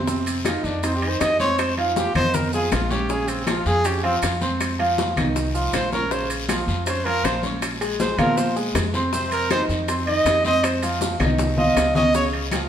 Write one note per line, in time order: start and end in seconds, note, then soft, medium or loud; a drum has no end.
0.00 0.58 F2 medium
0.07 0.38 C3 medium
0.07 0.39 C4 medium
0.07 0.39 C5 medium
0.07 high bongo medium
0.07 high conga soft
0.07 long guiro medium
0.07 maracas medium
0.26 high conga soft
0.26 high timbale medium
0.26 maracas medium
0.45 0.76 D#3 medium
0.45 0.77 D#4 medium
0.45 0.66 F4 medium
0.45 0.77 D#5 medium
0.45 high bongo medium
0.45 high conga medium
0.45 high timbale medium
0.45 short guiro medium
0.45 claves medium
0.45 maracas medium
0.64 1.17 F2 medium
0.64 0.85 D4 medium
0.64 high conga soft
0.64 short guiro medium
0.64 maracas soft
0.83 0.99 C4 medium
0.83 0.97 D#4 medium
0.83 0.99 C5 medium
0.83 0.99 C6 medium
0.83 high bongo medium
0.83 high conga soft
0.83 high timbale medium
0.83 long guiro medium
0.83 maracas medium
0.96 1.10 G4 medium
1.02 1.33 D#3 medium
1.02 1.33 D#4 medium
1.02 1.33 D#5 medium
1.02 high conga soft
1.02 high timbale medium
1.09 1.22 C5 medium
1.21 2.09 F2 medium
1.21 1.39 D#5 medium
1.21 high bongo medium
1.21 low bongo medium
1.21 high conga soft
1.21 high timbale medium
1.21 low timbale medium
1.21 short guiro medium
1.21 claves medium
1.21 maracas medium
1.40 1.71 C4 medium
1.40 1.71 C5 medium
1.40 1.60 C#5 loud
1.40 1.71 C6 medium
1.40 high conga medium
1.40 short guiro medium
1.40 maracas soft
1.59 1.77 C5 medium
1.59 high bongo medium
1.59 high conga soft
1.59 high timbale loud
1.59 long guiro medium
1.59 claves medium
1.59 maracas medium
1.77 2.08 F3 medium
1.77 1.93 D#4 soft
1.77 2.09 F4 medium
1.77 2.09 F5 medium
1.77 high bongo soft
1.77 high conga soft
1.77 high timbale medium
1.96 2.15 G4 medium
1.96 high bongo medium
1.96 high conga medium
1.96 short guiro medium
1.96 maracas medium
2.15 2.68 F2 loud
2.15 2.46 D#3 medium
2.15 2.47 D#4 medium
2.15 2.36 C5 loud
2.15 2.47 D#5 medium
2.15 high conga soft
2.15 low conga medium
2.15 high timbale loud
2.15 short guiro medium
2.15 claves medium
2.15 maracas soft
2.34 2.53 A#4 medium
2.34 high bongo medium
2.34 high conga soft
2.34 low conga medium
2.34 long guiro medium
2.34 maracas medium
2.53 2.84 F3 medium
2.53 2.84 F4 medium
2.53 2.74 G#4 medium
2.53 2.85 F5 medium
2.53 high bongo soft
2.53 high conga soft
2.53 maracas medium
2.72 3.60 A#1 medium
2.72 2.93 F4 medium
2.72 high bongo medium
2.72 low bongo medium
2.72 high conga medium
2.72 high timbale medium
2.72 short guiro medium
2.72 claves medium
2.72 maracas medium
2.91 3.06 C#4 medium
2.91 3.12 G4 medium
2.91 3.06 C#5 medium
2.91 3.07 C#6 medium
2.91 high bongo soft
2.91 high conga medium
2.91 short guiro medium
2.91 maracas soft
3.09 3.40 C#3 medium
3.09 3.40 C#4 medium
3.09 3.30 G#4 medium
3.09 3.41 C#5 medium
3.09 high bongo medium
3.09 high conga soft
3.09 long guiro medium
3.09 maracas medium
3.28 3.49 C4 medium
3.28 high conga soft
3.28 high timbale medium
3.28 maracas medium
3.47 3.78 F3 medium
3.47 3.78 F4 medium
3.47 3.68 F4 medium
3.47 3.78 F5 medium
3.47 high bongo medium
3.47 high conga medium
3.47 high timbale medium
3.47 short guiro medium
3.47 claves medium
3.47 maracas medium
3.66 4.19 F2 loud
3.66 3.88 G#4 loud
3.66 high conga soft
3.66 short guiro medium
3.66 maracas soft
3.84 4.00 C#4 medium
3.84 4.04 G4 medium
3.84 4.00 C#5 medium
3.84 4.00 C#6 medium
3.84 high bongo medium
3.84 high timbale medium
3.84 long guiro medium
3.84 maracas medium
4.03 4.34 F3 medium
4.03 4.16 C4 medium
4.03 4.35 F4 medium
4.03 4.35 F5 medium
4.03 high conga soft
4.03 high timbale medium
4.22 5.11 F2 medium
4.22 high bongo medium
4.22 low bongo medium
4.22 high conga soft
4.22 high timbale loud
4.22 short guiro medium
4.22 claves medium
4.22 maracas medium
4.41 4.72 C4 medium
4.41 4.72 C5 medium
4.41 4.73 C6 medium
4.41 high conga medium
4.41 short guiro medium
4.41 maracas soft
4.60 high bongo medium
4.60 high conga soft
4.60 high timbale medium
4.60 long guiro medium
4.60 claves medium
4.60 maracas medium
4.79 5.10 F3 medium
4.79 5.10 F4 medium
4.79 5.11 F5 medium
4.79 high bongo soft
4.79 high conga soft
4.79 high timbale medium
4.98 high bongo medium
4.98 high conga loud
4.98 short guiro medium
4.98 maracas medium
5.16 5.69 C2 loud
5.16 5.48 D#3 medium
5.16 5.48 D#4 medium
5.16 5.48 D#5 medium
5.16 high conga soft
5.16 low conga medium
5.16 high timbale loud
5.16 short guiro medium
5.16 claves medium
5.16 maracas soft
5.36 high bongo medium
5.36 high conga soft
5.36 long guiro medium
5.36 maracas medium
5.54 5.85 F3 medium
5.54 5.86 F4 medium
5.54 5.86 F5 medium
5.54 high bongo soft
5.54 high conga soft
5.54 maracas medium
5.73 6.62 A#1 medium
5.73 5.91 C5 medium
5.73 high bongo medium
5.73 low bongo medium
5.73 high conga medium
5.73 high timbale medium
5.73 short guiro medium
5.73 claves medium
5.73 maracas medium
5.92 6.08 C#4 medium
5.92 6.13 A#4 medium
5.92 6.08 C#5 medium
5.92 6.08 C#6 medium
5.92 high bongo soft
5.92 high conga medium
5.92 short guiro medium
5.92 maracas soft
6.11 6.43 C#3 medium
6.11 6.43 C#4 medium
6.11 6.30 C5 medium
6.11 6.43 C#5 medium
6.11 high bongo medium
6.11 high conga soft
6.11 long guiro medium
6.11 maracas medium
6.30 high conga soft
6.30 high timbale medium
6.30 maracas medium
6.49 6.80 F3 medium
6.49 6.80 F4 medium
6.49 6.81 F5 medium
6.49 high bongo medium
6.49 high conga loud
6.49 high timbale loud
6.49 short guiro medium
6.49 claves medium
6.49 maracas medium
6.67 7.20 F2 medium
6.67 high conga soft
6.67 short guiro medium
6.67 maracas soft
6.86 7.03 C#4 medium
6.86 7.07 C5 medium
6.86 7.03 C#5 medium
6.86 7.03 C#6 medium
6.86 high bongo medium
6.86 high conga soft
6.86 high timbale medium
6.86 long guiro medium
6.86 maracas medium
7.05 7.37 F3 medium
7.05 7.37 F4 medium
7.05 7.26 A#4 loud
7.05 7.37 F5 medium
7.05 high conga soft
7.05 high timbale medium
7.24 8.12 A#1 medium
7.24 7.44 C5 medium
7.24 high bongo medium
7.24 low bongo medium
7.24 high conga soft
7.24 high timbale loud
7.24 low timbale medium
7.24 short guiro medium
7.24 claves medium
7.24 maracas medium
7.43 7.74 C#4 medium
7.43 7.74 C#5 medium
7.43 7.74 C#6 medium
7.43 high conga medium
7.43 short guiro medium
7.43 maracas soft
7.62 high bongo medium
7.62 high conga soft
7.62 high timbale medium
7.62 long guiro medium
7.62 claves medium
7.62 maracas medium
7.81 8.12 G#3 medium
7.81 8.12 G#4 medium
7.81 8.12 G#5 medium
7.81 high bongo soft
7.81 high conga soft
7.81 high timbale medium
7.81 maracas medium
8.00 8.20 C5 medium
8.00 high bongo medium
8.00 high conga medium
8.00 short guiro medium
8.00 maracas medium
8.18 8.71 A#2 loud
8.18 8.50 F3 medium
8.18 8.50 F4 medium
8.18 8.39 A#4 loud
8.18 8.50 F5 medium
8.18 high conga soft
8.18 low conga medium
8.18 high timbale loud
8.18 short guiro medium
8.18 claves medium
8.18 maracas soft
8.37 8.56 C5 medium
8.37 high bongo medium
8.37 high conga soft
8.37 long guiro medium
8.37 maracas medium
8.56 8.87 G#3 medium
8.56 8.87 G#4 medium
8.56 8.87 G#5 medium
8.56 high bongo soft
8.56 high conga soft
8.56 maracas medium
8.74 9.63 F2 medium
8.74 high bongo medium
8.74 low bongo medium
8.74 high conga medium
8.74 high timbale loud
8.74 low timbale medium
8.74 short guiro medium
8.74 claves medium
8.74 maracas medium
8.93 9.10 C4 medium
8.93 9.10 C5 medium
8.93 9.10 C6 medium
8.93 high bongo soft
8.93 high conga medium
8.93 short guiro medium
8.93 maracas soft
9.13 9.44 C3 medium
9.13 9.44 C4 medium
9.13 9.31 C5 medium
9.13 9.45 C5 medium
9.13 high bongo medium
9.13 high conga soft
9.13 long guiro medium
9.13 maracas medium
9.31 9.50 A#4 loud
9.31 high conga soft
9.31 high timbale medium
9.31 maracas medium
9.50 9.82 D#3 medium
9.50 9.82 D#4 medium
9.50 9.63 C5 loud
9.50 9.82 D#5 medium
9.50 high bongo medium
9.50 high conga loud
9.50 high timbale medium
9.50 short guiro medium
9.50 claves medium
9.50 maracas medium
9.69 10.22 F2 loud
9.69 high conga soft
9.69 short guiro medium
9.69 maracas soft
9.88 10.04 C4 medium
9.88 10.04 C5 medium
9.88 10.04 C6 medium
9.88 high bongo medium
9.88 high conga soft
9.88 high timbale medium
9.88 long guiro medium
9.88 maracas medium
10.07 10.38 D#3 medium
10.07 10.38 D#4 medium
10.07 10.42 D#5 loud
10.07 10.39 D#5 medium
10.07 high conga soft
10.07 high timbale medium
10.25 11.14 F2 medium
10.25 high bongo medium
10.25 low bongo medium
10.25 high conga soft
10.25 high timbale loud
10.25 low timbale medium
10.25 short guiro medium
10.25 claves medium
10.25 maracas medium
10.45 10.76 C4 medium
10.45 10.76 C5 medium
10.45 10.66 D#5 loud
10.45 10.76 C6 medium
10.45 high conga medium
10.45 short guiro medium
10.45 maracas soft
10.63 10.83 C5 medium
10.63 high bongo medium
10.63 high conga soft
10.63 high timbale loud
10.63 long guiro medium
10.63 claves medium
10.63 maracas medium
10.82 11.13 F3 medium
10.82 11.14 F4 medium
10.82 11.14 F5 medium
10.82 high bongo soft
10.82 high conga soft
10.82 high timbale medium
10.82 maracas medium
11.01 high bongo medium
11.01 high conga medium
11.01 short guiro medium
11.01 maracas medium
11.20 11.72 C2 loud
11.20 11.51 D#3 medium
11.20 11.52 D#4 medium
11.20 11.52 D#5 medium
11.20 high conga soft
11.20 low conga medium
11.20 high timbale loud
11.20 short guiro medium
11.20 claves medium
11.20 maracas soft
11.38 high bongo medium
11.38 high conga loud
11.38 long guiro medium
11.38 maracas medium
11.57 11.89 F3 medium
11.57 11.89 F4 medium
11.57 11.93 D#5 medium
11.57 11.89 F5 medium
11.57 high bongo soft
11.57 low conga medium
11.76 12.65 C#2 medium
11.76 high bongo medium
11.76 low bongo medium
11.76 high timbale loud
11.76 low timbale medium
11.76 short guiro medium
11.76 claves medium
11.76 maracas medium
11.95 12.11 C#4 medium
11.95 12.11 C#5 medium
11.95 12.13 D#5 loud
11.95 12.11 C#6 medium
11.95 high bongo soft
11.95 low conga loud
11.95 short guiro medium
11.95 maracas soft
12.14 12.45 C#3 medium
12.14 12.46 C#4 medium
12.14 12.46 C#5 medium
12.14 12.26 C#5 medium
12.14 high bongo medium
12.14 high conga soft
12.14 long guiro medium
12.14 maracas medium
12.33 high conga soft
12.33 high timbale medium
12.51 12.69 F3 medium
12.51 12.69 F4 medium
12.51 12.69 F5 medium
12.51 high bongo medium
12.51 high conga loud
12.51 high timbale medium
12.51 short guiro medium
12.51 claves medium
12.51 maracas medium